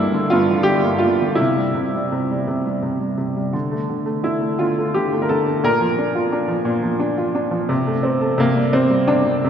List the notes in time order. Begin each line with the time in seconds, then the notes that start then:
Already playing: G2 D3 G3 A#3 D4 E4
0.14 D3
0.30 G2 F4
0.51 D3
0.63 G4
0.68 G3
0.84 A#3
0.99 F4
1.04 G3
1.21 D3
1.35 C3 E4
1.57 G3
1.75 C3
1.95 G3
2.12 C3
2.31 G3
2.48 C3
2.66 G3
2.83 C3
3.00 G3
3.18 C3
3.36 G3
3.53 D3
3.71 A3
3.90 D3
4.06 A3
4.23 D3 E4
4.41 A3
4.59 D3 F4
4.79 A3
4.94 D3 G4
5.13 A3
5.22 A#4
5.29 D3 A4
5.47 A3
5.63 A#2 A#4
5.81 F3
5.98 D4
6.15 F4
6.32 D4
6.48 F3
6.65 A#2
6.83 F3
7.00 D4
7.18 F4
7.35 D4
7.51 F3
7.69 C3
7.87 A3
8.03 C4
8.21 A4
8.38 C3 A#3
8.56 G3
8.73 C3 C4
8.90 G3
9.08 C3 D4
9.26 G3
9.44 C3